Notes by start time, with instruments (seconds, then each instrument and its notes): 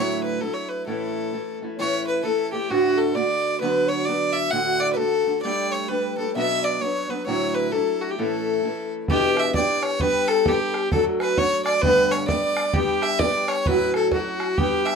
Already playing: steel-string acoustic guitar D2 A2 F#3 A3 D4 E4, fiddle C#5
0.23 fiddle B4
0.41 steel-string acoustic guitar F#3 A3 D4 E4, fiddle A4
0.54 fiddle C#5
0.68 fiddle B4
0.86 steel-string acoustic guitar A2 E3 A3 C#4 E4, fiddle A4
1.33 steel-string acoustic guitar E3 A3 C#4 E4
1.62 steel-string acoustic guitar E3 A3 C#4 E4
1.77 steel-string acoustic guitar A2 E3 A3 C#4 E4, flute C#5, fiddle C#5
2.07 fiddle B4, flute B4
2.21 steel-string acoustic guitar E3 A3, fiddle A4 B4
2.25 steel-string acoustic guitar C#4 E4, flute A4
2.52 steel-string acoustic guitar E3 A3 C#4 E4, fiddle G4, flute G4
2.68 steel-string acoustic guitar D2 A2 D3 A3 D4 F#4, flute F#4, fiddle F#4
2.96 flute A4, fiddle A4
3.14 steel-string acoustic guitar D3 A3 D4 F#4, flute D5, fiddle D5
3.60 steel-string acoustic guitar D2 D3 F#3 B3 D4 F#4, flute B4, fiddle B4
3.87 flute C#5, fiddle C#5
4.04 steel-string acoustic guitar F#3, flute D5, fiddle D5
4.08 steel-string acoustic guitar B3 D4 F#4
4.32 fiddle E5, flute E5
4.51 steel-string acoustic guitar D2 A2 D3 A3 D4 F#4, fiddle F#5, flute F#5
4.80 fiddle D5, flute D5
4.93 flute A4, fiddle B4
4.97 steel-string acoustic guitar D3 A3 D4 F#4, fiddle A4
5.26 steel-string acoustic guitar D3 A3 D4 F#4
5.42 steel-string acoustic guitar G3 A3 D4 G4, fiddle D5, flute D5
5.71 flute C#5, fiddle C#5
5.88 steel-string acoustic guitar G3 A3 D4 G4, fiddle B4, flute B4
6.17 steel-string acoustic guitar G3 A3 D4 G4, fiddle A4
6.35 steel-string acoustic guitar B2 F#3 B3 C#4 D4, flute E5, fiddle E5
6.63 flute D5, fiddle D5
6.81 steel-string acoustic guitar F#3 B3 C#4 D4, flute C#5, fiddle C#5
7.09 steel-string acoustic guitar F#3 B3 C#4 D4, fiddle B4, flute B4
7.26 steel-string acoustic guitar D2 A2 F#3 A3 D4 E4, fiddle C#5, flute C#5
7.54 fiddle B4, flute B4
7.71 steel-string acoustic guitar F#3 A3 D4 E4, flute A4, fiddle A4
8.01 fiddle F#4, flute F#4
8.09 flute G4, fiddle G4
8.18 steel-string acoustic guitar A2 E3 A3 C#4 E4, flute A4, fiddle A4
8.63 steel-string acoustic guitar E3 A3 C#4 E4
9.08 steel-string acoustic guitar E2 B2 E3 B3 D4 G4, flute G4, fiddle G4, bodhran
9.36 flute E5, fiddle E5, bodhran
9.53 steel-string acoustic guitar E3 B3 D4 G4, flute D5, fiddle D5, bodhran
9.83 flute C#5, fiddle C#5, bodhran
10.00 steel-string acoustic guitar G3 B3 D4 G4, flute B4, fiddle B4, bodhran
10.27 fiddle A4, flute A4, bodhran
10.46 steel-string acoustic guitar G3 B3 D4 G4, flute G4, fiddle G4, bodhran
10.60 flute A4
10.74 flute G4, bodhran
10.91 steel-string acoustic guitar F#3 A3 D4 F#4, flute A4, fiddle A4, bodhran
11.20 flute B4, fiddle B4, bodhran
11.38 steel-string acoustic guitar F#3 A3 D4 F#4, fiddle C#5, flute C#5, bodhran
11.65 fiddle D5, flute D5, bodhran
11.81 steel-string acoustic guitar G2 D3 G3 A3 B3 D4, fiddle B4, flute B4, bodhran
12.11 fiddle C#5, flute C#5, bodhran
12.27 steel-string acoustic guitar G3 A3 B3 D4, fiddle D5, flute D5, bodhran
12.57 bodhran
12.73 steel-string acoustic guitar G3 B3 D4 G4, fiddle G4, flute G4, bodhran
13.02 fiddle E5, flute E5, bodhran
13.19 steel-string acoustic guitar G3 B3 D4 G4, fiddle D5, flute D5, bodhran
13.48 fiddle C#5, flute C#5, bodhran
13.66 steel-string acoustic guitar A2 F#3 C#4 E4 F#4, fiddle B4, flute B4, bodhran
13.94 fiddle A4, flute A4, bodhran
14.12 steel-string acoustic guitar F#3 C#4 E4 F#4, fiddle F#4, flute F#4, bodhran
14.40 flute F#4, bodhran
14.57 steel-string acoustic guitar G3 B3 D4 G4, fiddle G4, flute G4, bodhran
14.86 fiddle E5, flute E5, bodhran